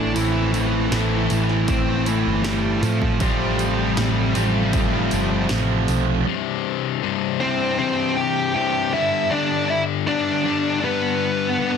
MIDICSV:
0, 0, Header, 1, 7, 480
1, 0, Start_track
1, 0, Key_signature, 0, "major"
1, 0, Tempo, 761421
1, 102, Time_signature, 4, 2, 24, 8
1, 7422, End_track
2, 0, Start_track
2, 0, Title_t, "Lead electric guitar"
2, 0, Program_c, 0, 29
2, 0, Note_on_c, 0, 62, 91
2, 0, Note_on_c, 0, 74, 67
2, 86, Note_off_c, 0, 62, 0
2, 88, Note_on_c, 0, 64, 95
2, 97, Note_off_c, 0, 74, 0
2, 102, Note_on_c, 0, 52, 81
2, 319, Note_off_c, 0, 64, 0
2, 326, Note_off_c, 0, 52, 0
2, 333, Note_on_c, 0, 64, 93
2, 352, Note_on_c, 0, 52, 77
2, 1045, Note_off_c, 0, 52, 0
2, 1053, Note_on_c, 0, 60, 91
2, 1067, Note_on_c, 0, 72, 71
2, 1082, Note_off_c, 0, 64, 0
2, 1282, Note_off_c, 0, 60, 0
2, 1290, Note_off_c, 0, 72, 0
2, 1301, Note_on_c, 0, 64, 97
2, 1315, Note_on_c, 0, 52, 73
2, 1532, Note_off_c, 0, 64, 0
2, 1535, Note_off_c, 0, 52, 0
2, 1535, Note_on_c, 0, 67, 101
2, 1550, Note_on_c, 0, 55, 85
2, 1772, Note_off_c, 0, 55, 0
2, 1776, Note_off_c, 0, 67, 0
2, 1778, Note_on_c, 0, 65, 96
2, 1792, Note_on_c, 0, 53, 76
2, 2013, Note_off_c, 0, 65, 0
2, 2014, Note_off_c, 0, 53, 0
2, 2016, Note_on_c, 0, 67, 101
2, 2026, Note_on_c, 0, 55, 72
2, 3438, Note_off_c, 0, 67, 0
2, 3443, Note_off_c, 0, 55, 0
2, 4669, Note_on_c, 0, 72, 86
2, 4677, Note_on_c, 0, 60, 69
2, 4896, Note_off_c, 0, 60, 0
2, 4901, Note_off_c, 0, 72, 0
2, 4909, Note_on_c, 0, 72, 98
2, 4913, Note_on_c, 0, 60, 73
2, 5132, Note_off_c, 0, 72, 0
2, 5134, Note_off_c, 0, 60, 0
2, 5146, Note_on_c, 0, 79, 100
2, 5153, Note_on_c, 0, 67, 82
2, 5374, Note_off_c, 0, 67, 0
2, 5389, Note_off_c, 0, 79, 0
2, 5396, Note_on_c, 0, 79, 115
2, 5402, Note_on_c, 0, 67, 84
2, 5618, Note_off_c, 0, 67, 0
2, 5632, Note_on_c, 0, 76, 95
2, 5634, Note_off_c, 0, 79, 0
2, 5637, Note_on_c, 0, 64, 76
2, 5855, Note_off_c, 0, 64, 0
2, 5867, Note_on_c, 0, 74, 94
2, 5875, Note_on_c, 0, 62, 79
2, 5876, Note_off_c, 0, 76, 0
2, 6094, Note_off_c, 0, 62, 0
2, 6114, Note_off_c, 0, 74, 0
2, 6115, Note_on_c, 0, 76, 94
2, 6118, Note_on_c, 0, 64, 72
2, 6179, Note_off_c, 0, 76, 0
2, 6181, Note_off_c, 0, 64, 0
2, 6350, Note_on_c, 0, 62, 77
2, 6352, Note_on_c, 0, 74, 78
2, 6802, Note_off_c, 0, 62, 0
2, 6830, Note_on_c, 0, 59, 62
2, 6833, Note_off_c, 0, 74, 0
2, 6835, Note_on_c, 0, 71, 83
2, 7422, Note_off_c, 0, 59, 0
2, 7422, Note_off_c, 0, 71, 0
2, 7422, End_track
3, 0, Start_track
3, 0, Title_t, "Distorted electric guitar"
3, 0, Program_c, 1, 30
3, 1305, Note_on_c, 1, 69, 89
3, 1311, Note_on_c, 1, 64, 78
3, 1312, Note_on_c, 1, 60, 79
3, 1315, Note_on_c, 1, 57, 72
3, 1319, Note_on_c, 1, 52, 73
3, 1321, Note_on_c, 1, 45, 67
3, 1775, Note_off_c, 1, 64, 0
3, 1779, Note_off_c, 1, 52, 0
3, 1780, Note_off_c, 1, 45, 0
3, 2023, Note_off_c, 1, 57, 0
3, 2029, Note_off_c, 1, 60, 0
3, 2031, Note_off_c, 1, 69, 0
3, 3457, Note_on_c, 1, 41, 80
3, 3464, Note_on_c, 1, 48, 76
3, 3467, Note_on_c, 1, 53, 87
3, 3467, Note_on_c, 1, 57, 84
3, 3473, Note_on_c, 1, 60, 83
3, 3475, Note_on_c, 1, 65, 84
3, 3929, Note_off_c, 1, 41, 0
3, 3932, Note_off_c, 1, 48, 0
3, 3934, Note_off_c, 1, 53, 0
3, 3934, Note_off_c, 1, 57, 0
3, 3937, Note_off_c, 1, 60, 0
3, 3938, Note_off_c, 1, 65, 0
3, 7422, End_track
4, 0, Start_track
4, 0, Title_t, "Distorted electric guitar"
4, 0, Program_c, 2, 30
4, 0, Note_on_c, 2, 45, 83
4, 0, Note_on_c, 2, 52, 94
4, 0, Note_on_c, 2, 57, 94
4, 0, Note_on_c, 2, 60, 101
4, 0, Note_on_c, 2, 64, 97
4, 0, Note_on_c, 2, 69, 96
4, 565, Note_off_c, 2, 52, 0
4, 571, Note_off_c, 2, 64, 0
4, 576, Note_off_c, 2, 45, 0
4, 579, Note_on_c, 2, 45, 74
4, 581, Note_on_c, 2, 52, 82
4, 584, Note_off_c, 2, 57, 0
4, 586, Note_on_c, 2, 57, 80
4, 588, Note_off_c, 2, 60, 0
4, 590, Note_on_c, 2, 60, 86
4, 596, Note_on_c, 2, 64, 81
4, 597, Note_off_c, 2, 69, 0
4, 599, Note_on_c, 2, 69, 84
4, 1770, Note_off_c, 2, 45, 0
4, 1772, Note_off_c, 2, 52, 0
4, 1779, Note_off_c, 2, 64, 0
4, 2014, Note_on_c, 2, 41, 86
4, 2023, Note_on_c, 2, 48, 81
4, 2026, Note_off_c, 2, 57, 0
4, 2029, Note_off_c, 2, 60, 0
4, 2029, Note_on_c, 2, 53, 90
4, 2031, Note_on_c, 2, 57, 88
4, 2036, Note_off_c, 2, 69, 0
4, 2036, Note_on_c, 2, 60, 84
4, 2038, Note_on_c, 2, 65, 81
4, 2728, Note_off_c, 2, 41, 0
4, 2728, Note_off_c, 2, 65, 0
4, 2732, Note_off_c, 2, 48, 0
4, 2735, Note_off_c, 2, 53, 0
4, 2736, Note_off_c, 2, 57, 0
4, 2736, Note_off_c, 2, 60, 0
4, 2736, Note_on_c, 2, 65, 82
4, 2743, Note_on_c, 2, 60, 78
4, 2747, Note_on_c, 2, 57, 70
4, 2752, Note_on_c, 2, 53, 78
4, 2755, Note_on_c, 2, 48, 72
4, 2759, Note_on_c, 2, 41, 71
4, 3928, Note_off_c, 2, 65, 0
4, 3932, Note_off_c, 2, 60, 0
4, 3934, Note_off_c, 2, 57, 0
4, 3937, Note_off_c, 2, 53, 0
4, 3938, Note_off_c, 2, 48, 0
4, 3940, Note_off_c, 2, 41, 0
4, 3947, Note_on_c, 2, 36, 88
4, 3951, Note_on_c, 2, 43, 96
4, 3958, Note_on_c, 2, 48, 109
4, 4419, Note_off_c, 2, 36, 0
4, 4422, Note_off_c, 2, 43, 0
4, 4426, Note_on_c, 2, 36, 92
4, 4427, Note_off_c, 2, 48, 0
4, 4429, Note_on_c, 2, 43, 92
4, 4434, Note_on_c, 2, 48, 88
4, 4657, Note_off_c, 2, 36, 0
4, 4659, Note_off_c, 2, 43, 0
4, 4664, Note_on_c, 2, 36, 76
4, 4665, Note_off_c, 2, 48, 0
4, 4666, Note_on_c, 2, 43, 79
4, 4673, Note_on_c, 2, 48, 87
4, 4896, Note_off_c, 2, 36, 0
4, 4904, Note_off_c, 2, 43, 0
4, 4904, Note_on_c, 2, 36, 99
4, 4906, Note_off_c, 2, 48, 0
4, 4911, Note_on_c, 2, 43, 99
4, 4913, Note_on_c, 2, 48, 105
4, 5381, Note_off_c, 2, 36, 0
4, 5386, Note_off_c, 2, 43, 0
4, 5389, Note_on_c, 2, 36, 89
4, 5390, Note_off_c, 2, 48, 0
4, 5394, Note_on_c, 2, 43, 91
4, 5398, Note_on_c, 2, 48, 95
4, 5613, Note_off_c, 2, 36, 0
4, 5616, Note_off_c, 2, 43, 0
4, 5618, Note_off_c, 2, 48, 0
4, 5630, Note_on_c, 2, 43, 103
4, 5637, Note_on_c, 2, 50, 107
4, 5638, Note_on_c, 2, 55, 107
4, 5862, Note_off_c, 2, 43, 0
4, 5865, Note_off_c, 2, 50, 0
4, 5870, Note_off_c, 2, 55, 0
4, 5870, Note_on_c, 2, 43, 84
4, 5873, Note_on_c, 2, 50, 90
4, 5878, Note_on_c, 2, 55, 112
4, 6342, Note_off_c, 2, 43, 0
4, 6348, Note_off_c, 2, 50, 0
4, 6349, Note_on_c, 2, 43, 80
4, 6350, Note_off_c, 2, 55, 0
4, 6355, Note_on_c, 2, 50, 88
4, 6358, Note_on_c, 2, 55, 91
4, 6576, Note_off_c, 2, 43, 0
4, 6584, Note_off_c, 2, 50, 0
4, 6584, Note_off_c, 2, 55, 0
4, 6584, Note_on_c, 2, 43, 87
4, 6591, Note_on_c, 2, 50, 81
4, 6591, Note_on_c, 2, 55, 102
4, 6818, Note_off_c, 2, 43, 0
4, 6820, Note_off_c, 2, 50, 0
4, 6826, Note_on_c, 2, 43, 87
4, 6828, Note_off_c, 2, 55, 0
4, 6828, Note_on_c, 2, 50, 98
4, 6836, Note_on_c, 2, 55, 103
4, 7294, Note_off_c, 2, 43, 0
4, 7302, Note_off_c, 2, 50, 0
4, 7302, Note_on_c, 2, 43, 91
4, 7308, Note_off_c, 2, 55, 0
4, 7310, Note_on_c, 2, 50, 100
4, 7315, Note_on_c, 2, 55, 99
4, 7422, Note_off_c, 2, 43, 0
4, 7422, Note_off_c, 2, 50, 0
4, 7422, Note_off_c, 2, 55, 0
4, 7422, End_track
5, 0, Start_track
5, 0, Title_t, "Distorted electric guitar"
5, 0, Program_c, 3, 30
5, 100, Note_on_c, 3, 45, 83
5, 109, Note_on_c, 3, 52, 89
5, 118, Note_on_c, 3, 57, 102
5, 1055, Note_off_c, 3, 45, 0
5, 1055, Note_off_c, 3, 52, 0
5, 1058, Note_on_c, 3, 45, 77
5, 1068, Note_on_c, 3, 52, 79
5, 1073, Note_off_c, 3, 57, 0
5, 1076, Note_on_c, 3, 57, 86
5, 2010, Note_off_c, 3, 45, 0
5, 2015, Note_off_c, 3, 52, 0
5, 2020, Note_on_c, 3, 41, 83
5, 2030, Note_on_c, 3, 48, 89
5, 2035, Note_off_c, 3, 57, 0
5, 2038, Note_on_c, 3, 53, 98
5, 2971, Note_off_c, 3, 41, 0
5, 2976, Note_off_c, 3, 48, 0
5, 2980, Note_off_c, 3, 53, 0
5, 2981, Note_on_c, 3, 41, 80
5, 2991, Note_on_c, 3, 48, 79
5, 2999, Note_on_c, 3, 53, 94
5, 3931, Note_off_c, 3, 41, 0
5, 3936, Note_off_c, 3, 48, 0
5, 3940, Note_off_c, 3, 53, 0
5, 7422, End_track
6, 0, Start_track
6, 0, Title_t, "Picked electric bass"
6, 0, Program_c, 4, 34
6, 0, Note_on_c, 4, 33, 98
6, 84, Note_off_c, 4, 33, 0
6, 99, Note_on_c, 4, 33, 96
6, 557, Note_off_c, 4, 33, 0
6, 578, Note_on_c, 4, 33, 97
6, 805, Note_off_c, 4, 33, 0
6, 822, Note_on_c, 4, 33, 86
6, 1400, Note_off_c, 4, 33, 0
6, 1423, Note_on_c, 4, 31, 86
6, 1760, Note_off_c, 4, 31, 0
6, 1782, Note_on_c, 4, 45, 101
6, 2008, Note_off_c, 4, 45, 0
6, 2022, Note_on_c, 4, 33, 102
6, 2480, Note_off_c, 4, 33, 0
6, 2502, Note_on_c, 4, 33, 101
6, 2729, Note_off_c, 4, 33, 0
6, 2746, Note_on_c, 4, 33, 83
6, 3202, Note_off_c, 4, 33, 0
6, 3228, Note_on_c, 4, 31, 85
6, 3445, Note_off_c, 4, 31, 0
6, 3472, Note_on_c, 4, 33, 85
6, 3687, Note_off_c, 4, 33, 0
6, 3711, Note_on_c, 4, 35, 89
6, 3926, Note_off_c, 4, 35, 0
6, 7422, End_track
7, 0, Start_track
7, 0, Title_t, "Drums"
7, 100, Note_on_c, 9, 46, 73
7, 163, Note_off_c, 9, 46, 0
7, 341, Note_on_c, 9, 46, 61
7, 404, Note_off_c, 9, 46, 0
7, 580, Note_on_c, 9, 38, 99
7, 580, Note_on_c, 9, 46, 75
7, 643, Note_off_c, 9, 38, 0
7, 643, Note_off_c, 9, 46, 0
7, 820, Note_on_c, 9, 46, 61
7, 883, Note_off_c, 9, 46, 0
7, 942, Note_on_c, 9, 38, 33
7, 1005, Note_off_c, 9, 38, 0
7, 1059, Note_on_c, 9, 46, 81
7, 1060, Note_on_c, 9, 36, 110
7, 1122, Note_off_c, 9, 46, 0
7, 1123, Note_off_c, 9, 36, 0
7, 1301, Note_on_c, 9, 46, 61
7, 1364, Note_off_c, 9, 46, 0
7, 1541, Note_on_c, 9, 38, 113
7, 1541, Note_on_c, 9, 46, 75
7, 1604, Note_off_c, 9, 38, 0
7, 1604, Note_off_c, 9, 46, 0
7, 1783, Note_on_c, 9, 46, 58
7, 1846, Note_off_c, 9, 46, 0
7, 1902, Note_on_c, 9, 36, 84
7, 1965, Note_off_c, 9, 36, 0
7, 2019, Note_on_c, 9, 46, 79
7, 2022, Note_on_c, 9, 36, 111
7, 2082, Note_off_c, 9, 46, 0
7, 2085, Note_off_c, 9, 36, 0
7, 2264, Note_on_c, 9, 46, 60
7, 2327, Note_off_c, 9, 46, 0
7, 2504, Note_on_c, 9, 38, 103
7, 2504, Note_on_c, 9, 46, 73
7, 2567, Note_off_c, 9, 38, 0
7, 2567, Note_off_c, 9, 46, 0
7, 2743, Note_on_c, 9, 46, 57
7, 2806, Note_off_c, 9, 46, 0
7, 2983, Note_on_c, 9, 46, 74
7, 2984, Note_on_c, 9, 36, 111
7, 3046, Note_off_c, 9, 46, 0
7, 3047, Note_off_c, 9, 36, 0
7, 3223, Note_on_c, 9, 46, 56
7, 3286, Note_off_c, 9, 46, 0
7, 3462, Note_on_c, 9, 38, 110
7, 3462, Note_on_c, 9, 46, 72
7, 3525, Note_off_c, 9, 38, 0
7, 3525, Note_off_c, 9, 46, 0
7, 3708, Note_on_c, 9, 46, 49
7, 3771, Note_off_c, 9, 46, 0
7, 7422, End_track
0, 0, End_of_file